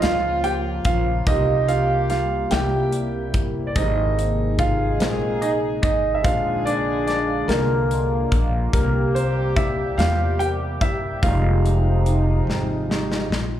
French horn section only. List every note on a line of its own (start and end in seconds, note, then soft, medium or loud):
0.00 1.23 F4 loud
1.28 2.51 G4 loud
2.52 3.30 G4 loud
3.77 6.21 G#4 loud
6.25 8.43 G#4 loud
8.73 10.77 G4 loud
10.81 10.97 G4 medium
11.23 12.02 F4 loud
12.06 13.03 D#4 medium
13.31 13.60 F4 medium